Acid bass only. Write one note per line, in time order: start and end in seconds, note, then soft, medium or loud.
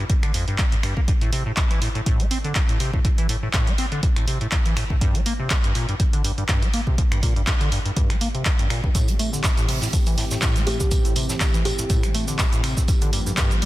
0.10 0.14 G2 medium
0.23 0.32 D3 medium
0.34 0.45 F2 medium
0.48 0.57 G2 medium
0.59 0.66 G3 medium
0.72 0.76 G2 medium
0.83 0.94 G2 medium
0.97 1.01 A#3 medium
1.08 1.12 G2 medium
1.21 1.31 A2 medium
1.32 1.44 C3 medium
1.46 1.52 A2 medium
1.57 1.62 A2 medium
1.71 1.80 E3 medium
1.82 1.89 A2 medium
1.95 2.01 A2 medium
2.06 2.21 A2 loud
2.20 2.26 A3 loud
2.31 2.38 C4 medium
2.44 2.54 D3 medium
2.56 2.60 G2 medium
2.69 2.78 A2 medium
2.80 2.91 C3 medium
2.94 3.00 A2 medium
3.05 3.09 A2 medium
3.18 3.27 E3 medium
3.29 3.37 A2 medium
3.43 3.49 A2 medium
3.54 3.69 A2 loud
3.67 3.73 A3 loud
3.78 3.86 C4 medium
3.92 4.01 D3 medium
4.03 4.07 G2 medium
4.16 4.26 A2 medium
4.27 4.39 C3 medium
4.41 4.47 A2 medium
4.52 4.57 A2 medium
4.66 4.75 E3 medium
4.77 4.84 A2 medium
4.90 4.96 A2 medium
5.01 5.16 G2 loud
5.15 5.21 G3 loud
5.26 5.33 A#3 medium
5.39 5.49 C3 medium
5.51 5.55 F2 medium
5.64 5.73 G2 medium
5.75 5.86 A#2 medium
5.89 5.95 G2 medium
6.00 6.04 G2 medium
6.13 6.22 D3 medium
6.24 6.32 G2 medium
6.38 6.44 G2 medium
6.49 6.64 G2 loud
6.62 6.68 G3 loud
6.74 6.81 A#3 medium
6.87 6.96 C3 medium
6.98 7.03 F2 medium
7.12 7.21 G2 medium
7.23 7.34 A#2 medium
7.36 7.42 G2 medium
7.47 7.52 G2 medium
7.61 7.70 D3 medium
7.72 7.79 G2 medium
7.85 7.91 G2 medium
7.96 8.12 G2 loud
8.10 8.16 G3 loud
8.21 8.28 A#3 medium
8.35 8.44 C3 medium
8.46 8.50 F2 medium
8.59 8.68 G2 medium
8.70 8.81 A#2 medium
8.84 8.90 G2 medium
8.95 9.10 A2 loud
9.08 9.14 A3 loud
9.19 9.31 A3 medium
9.33 9.42 D3 medium
9.44 9.48 G2 medium
9.57 9.67 A2 medium
9.69 9.80 C3 medium
9.82 9.88 A2 medium
9.93 9.98 A2 medium
10.07 10.16 E3 medium
10.18 10.25 A2 medium
10.31 10.37 A2 medium
10.42 10.57 A2 medium
10.56 10.62 A3 loud
10.67 10.78 A3 medium
10.80 10.90 D3 medium
10.91 10.96 G2 medium
11.05 11.14 A2 medium
11.16 11.27 C3 medium
11.29 11.36 A2 medium
11.41 11.45 A2 medium
11.54 11.63 E3 medium
11.65 11.73 A2 medium
11.79 11.85 A2 medium
11.90 12.05 A2 loud
12.03 12.09 A3 loud
12.14 12.26 A3 medium
12.28 12.37 D3 medium
12.39 12.43 G2 medium
12.53 12.62 A2 medium
12.64 12.75 C3 medium
12.77 12.83 A2 medium
12.88 12.93 G2 medium
13.02 13.11 D3 medium
13.13 13.20 G2 medium
13.26 13.32 G2 medium
13.37 13.52 G2 loud
13.51 13.57 G3 loud
13.62 13.65 G3 medium